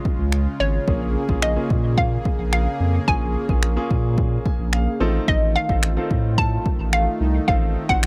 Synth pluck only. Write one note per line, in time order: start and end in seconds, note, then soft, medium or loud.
0.60 1.39 C#5 medium
1.43 1.94 D#5 medium
1.98 2.52 F5 loud
2.53 3.04 F5 medium
3.08 4.14 G#5 loud
5.28 5.56 D#5 loud
5.56 6.41 F5 loud
6.38 6.95 A5 loud
6.93 7.44 F5 medium
7.48 7.90 F5 loud
7.89 8.06 F#5 loud